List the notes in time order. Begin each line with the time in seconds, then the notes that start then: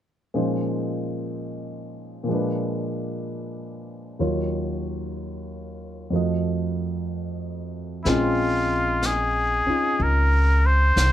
0.34 A#2 F3 G#3 C#4 D#4 C5
2.24 A#2 F3
2.29 G#3 D4
2.34 B4
4.19 D#2 D#3 F#3 F4 C#5
6.10 F2 F3 A3
6.14 F#4 D#5
8.04 A#1 G#3 C4 E4, brush sweep, snare
8.08 C#4 F4
9.02 G#4, brush sweep, snare, hi-hat pedal
9.66 C#4 D#4 F4, muted upright bass stroke
10.00 C#2 A#4, brush sweep
10.66 C5
10.96 C2, brush sweep, snare, hi-hat pedal